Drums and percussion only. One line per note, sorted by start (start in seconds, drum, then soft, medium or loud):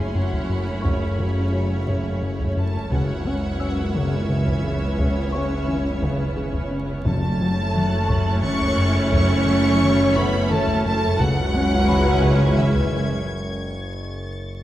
0.32 taiko medium
0.84 taiko medium
1.88 taiko medium
2.40 taiko medium
2.91 taiko medium
3.95 taiko medium
4.47 taiko medium
4.98 taiko medium
5.67 taiko mid soft
6.02 taiko medium
6.37 taiko mid soft
6.54 taiko medium
7.05 taiko medium
7.74 taiko mid medium
8.09 taiko medium
8.43 taiko mid medium
8.60 taiko medium
9.12 taiko medium
9.82 taiko mid medium
10.16 taiko medium
10.50 taiko mid medium
10.67 taiko medium
11.19 taiko loud
11.88 taiko mid medium
12.23 taiko medium
12.57 taiko mid medium
12.74 taiko medium